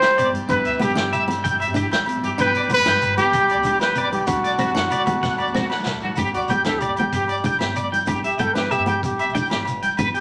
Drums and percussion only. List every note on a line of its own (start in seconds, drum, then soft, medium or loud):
0.02 snare medium
0.02 closed hi-hat medium
0.02 low agogo medium
0.10 low conga medium
0.18 closed hi-hat medium
0.18 high conga medium
0.18 low agogo medium
0.18 shekere medium
0.33 closed hi-hat soft
0.33 low conga medium
0.42 low conga soft
0.49 kick medium
0.49 closed hi-hat medium
0.49 high conga medium
0.49 low agogo medium
0.49 shekere medium
0.57 low conga medium
0.65 closed hi-hat soft
0.73 shekere soft
0.80 closed hi-hat soft
0.80 low conga medium
0.80 low agogo medium
0.80 shekere medium
0.89 high conga medium
0.89 shekere soft
0.97 snare medium
0.97 closed hi-hat medium
1.04 low conga medium
1.13 closed hi-hat soft
1.13 low agogo medium
1.13 shekere loud
1.28 snare soft
1.28 closed hi-hat soft
1.28 high conga medium
1.28 low conga medium
1.28 low agogo medium
1.37 low conga soft
1.45 kick medium
1.45 closed hi-hat medium
1.45 shekere medium
1.52 low conga medium
1.60 closed hi-hat medium
1.60 low agogo medium
1.68 high conga medium
1.75 closed hi-hat medium
1.75 shekere loud
1.91 snare medium
1.91 closed hi-hat medium
1.91 low agogo medium
1.99 low conga medium
2.06 closed hi-hat medium
2.06 high conga medium
2.06 low agogo medium
2.23 closed hi-hat soft
2.23 low conga medium
2.38 kick medium
2.38 closed hi-hat medium
2.38 high conga medium
2.38 low agogo medium
2.38 shekere loud
2.46 low conga medium
2.55 closed hi-hat soft
2.63 shekere soft
2.68 closed hi-hat medium
2.68 low conga medium
2.68 low agogo medium
2.68 shekere loud
2.77 high conga medium
2.77 shekere soft
2.86 snare medium
2.86 closed hi-hat medium
2.92 low conga medium
3.02 closed hi-hat soft
3.02 low agogo medium
3.02 shekere medium
3.17 closed hi-hat medium
3.17 high conga medium
3.17 low conga medium
3.17 low agogo medium
3.27 low conga soft
3.33 kick loud
3.33 closed hi-hat medium
3.33 shekere loud
3.43 low conga medium
3.48 closed hi-hat soft
3.48 low agogo medium
3.58 high conga medium
3.63 closed hi-hat soft
3.63 low conga medium
3.63 shekere loud
3.80 snare medium
3.80 closed hi-hat medium
3.80 low agogo medium
3.89 low conga medium
3.95 closed hi-hat soft
3.95 high conga medium
3.95 low agogo medium
3.95 shekere loud
4.12 closed hi-hat soft
4.12 low conga loud
4.21 low conga soft
4.27 kick loud
4.27 closed hi-hat medium
4.27 high conga medium
4.27 low agogo medium
4.27 shekere loud
4.36 low conga medium
4.44 closed hi-hat soft
4.51 low conga soft
4.51 shekere soft
4.59 closed hi-hat medium
4.59 low conga medium
4.59 low agogo medium
4.59 shekere loud
4.68 high conga medium
4.68 low conga soft
4.68 shekere soft
4.75 snare medium
4.75 closed hi-hat medium
4.75 low conga soft
4.83 low conga medium
4.91 closed hi-hat medium
4.91 low agogo medium
4.91 shekere medium
5.06 kick medium
5.06 closed hi-hat medium
5.06 high conga medium
5.06 low conga medium
5.06 low agogo medium
5.06 shekere soft
5.16 low conga soft
5.23 kick medium
5.23 snare medium
5.23 shekere medium
5.33 low conga medium
5.38 low conga soft
5.38 low agogo medium
5.38 shekere soft
5.47 high conga medium
5.47 low conga soft
5.47 shekere soft
5.55 snare medium
5.55 low conga medium
5.55 shekere medium
5.70 snare medium
5.70 low agogo medium
5.79 low conga medium
5.79 shekere soft
5.85 snare medium
5.85 low agogo medium
5.85 shekere medium
5.94 low conga soft
5.94 shekere soft
6.01 low conga loud
6.01 shekere soft
6.12 low conga soft
6.12 shekere medium
6.17 kick medium
6.17 closed hi-hat medium
6.17 high conga medium
6.17 low agogo medium
6.27 low conga medium
6.27 shekere soft
6.34 closed hi-hat soft
6.34 shekere soft
6.42 shekere soft
6.48 closed hi-hat soft
6.48 low conga medium
6.48 low agogo medium
6.48 shekere medium
6.59 low conga soft
6.64 snare medium
6.64 closed hi-hat medium
6.64 high conga medium
6.75 low conga medium
6.81 closed hi-hat soft
6.81 low agogo medium
6.81 shekere medium
6.97 closed hi-hat medium
6.97 low conga medium
6.97 low agogo medium
7.13 kick medium
7.13 closed hi-hat medium
7.13 high conga medium
7.13 low conga soft
7.13 shekere medium
7.22 low conga medium
7.28 closed hi-hat medium
7.28 low agogo medium
7.37 shekere soft
7.44 kick medium
7.44 closed hi-hat medium
7.44 low conga medium
7.44 shekere medium
7.52 shekere soft
7.59 snare medium
7.59 closed hi-hat medium
7.59 high conga medium
7.59 low agogo medium
7.69 low conga medium
7.76 closed hi-hat medium
7.76 low agogo medium
7.76 shekere medium
7.93 closed hi-hat soft
7.93 low conga medium
8.00 shekere soft
8.06 kick medium
8.06 closed hi-hat medium
8.06 high conga medium
8.06 low agogo medium
8.06 shekere medium
8.16 low conga medium
8.16 shekere soft
8.24 closed hi-hat soft
8.24 shekere soft
8.31 shekere soft
8.39 closed hi-hat soft
8.39 low conga medium
8.39 low agogo medium
8.39 shekere loud
8.49 low conga soft
8.56 snare medium
8.56 closed hi-hat medium
8.56 high conga medium
8.63 low conga medium
8.71 closed hi-hat soft
8.71 low agogo medium
8.71 shekere medium
8.87 closed hi-hat soft
8.87 low conga medium
8.87 low agogo medium
9.03 kick loud
9.03 closed hi-hat medium
9.03 high conga medium
9.03 low conga soft
9.03 shekere medium
9.10 low conga medium
9.19 closed hi-hat soft
9.19 low agogo medium
9.19 shekere soft
9.29 shekere soft
9.35 kick medium
9.35 closed hi-hat soft
9.35 low conga medium
9.35 shekere medium
9.45 shekere soft
9.50 snare medium
9.50 closed hi-hat medium
9.50 high conga medium
9.50 low agogo medium
9.61 low conga medium
9.65 closed hi-hat soft
9.65 low agogo medium
9.65 shekere loud
9.82 closed hi-hat soft
9.82 low conga medium
9.91 shekere soft
9.97 kick medium
9.97 closed hi-hat medium
9.97 high conga medium
9.97 low agogo medium
9.97 shekere loud
10.07 low conga medium
10.07 shekere soft
10.15 closed hi-hat soft
10.15 shekere soft